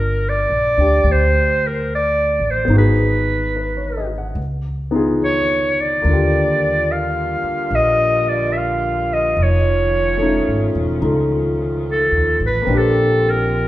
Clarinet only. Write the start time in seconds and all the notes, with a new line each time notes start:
Already playing: A#4
0.29 D5
1.12 C5
1.67 A#4
1.95 D5
2.51 C5
2.78 B4
5.25 C#5
5.80 D5
6.92 F5
7.75 D#5
8.29 D5
8.53 E5
8.57 F5
9.13 D#5
9.43 C#5
11.92 A4
12.46 B4
12.77 A4
13.30 A#4